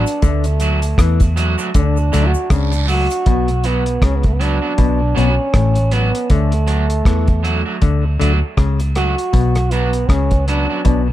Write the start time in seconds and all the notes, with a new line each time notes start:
Already playing: D4
0.07 closed hi-hat, cabasa
0.22 D2 D3 A3, kick, closed hi-hat, cabasa
0.44 closed hi-hat, cabasa
0.60 F#3 A3 D4 F#4, closed hi-hat, cabasa
0.82 closed hi-hat, cabasa
0.98 E2 E3, kick, cross-stick, closed hi-hat, cabasa
1.20 kick, closed hi-hat, cabasa
1.36 F#3 A3 D4 F#4, closed hi-hat, cabasa
1.58 F#3 A3 D4 F#4, cabasa
1.74 D2 D3 D4, kick, closed hi-hat, cabasa
1.97 cabasa
2.12 D2 D3 F#3 A3 D4 F#4, closed hi-hat, cabasa
2.27 F#4
2.34 cabasa
2.50 C#2 C#3 D4, kick, cross-stick, closed hi-hat, cabasa, long guiro
2.72 closed hi-hat, cabasa
2.88 F#3 A3 D4 F#4, open hi-hat, cabasa
3.10 closed hi-hat, cabasa
3.26 B1 B2, kick, closed hi-hat
3.48 closed hi-hat
3.64 F#3 B3 D4 F#4, closed hi-hat
3.86 closed hi-hat
4.02 C#2 C#3 C#4, kick, cross-stick, closed hi-hat
4.16 B3
4.23 A3, kick, closed hi-hat
4.34 B3
4.40 F#3 B3 D4 F#4, closed hi-hat
4.62 F#3 B3 D4 F#4
4.78 B1 B2, kick, closed hi-hat
5.15 B1 B2 F#3 B3 C#4 D4 F#4, closed hi-hat
5.54 A1 A2, kick, cross-stick, closed hi-hat
5.75 closed hi-hat
5.91 F#3 B3 D4 F#4, closed hi-hat
6.15 closed hi-hat
6.30 D2 D3 A3, kick, closed hi-hat
6.52 closed hi-hat
6.67 F#3 A3 D4 F#4, closed hi-hat
6.90 closed hi-hat
7.05 E2 E3, kick, cross-stick, closed hi-hat
7.28 kick, closed hi-hat
7.43 F#3 A3 D4 F#4, closed hi-hat
7.65 F#3 A3 D4 F#4
7.82 D2 D3, kick, closed hi-hat
8.20 D2 D3 F#3 A3 D4 F#4, closed hi-hat
8.57 C#2 C#3, kick, cross-stick, closed hi-hat
8.80 closed hi-hat
8.95 F#3 A3 D4 F#4, cross-stick, closed hi-hat
9.18 closed hi-hat
9.33 B1 B2, kick, closed hi-hat
9.55 cross-stick, closed hi-hat
9.71 F#3 B3 D4 F#4, closed hi-hat
9.93 closed hi-hat
10.09 C#2 C#3 C#4, kick, cross-stick, closed hi-hat
10.31 kick, closed hi-hat
10.48 F#3 B3 D4 F#4, closed hi-hat
10.70 F#3 B3 D4 F#4
10.85 B1 B2 D4, kick, closed hi-hat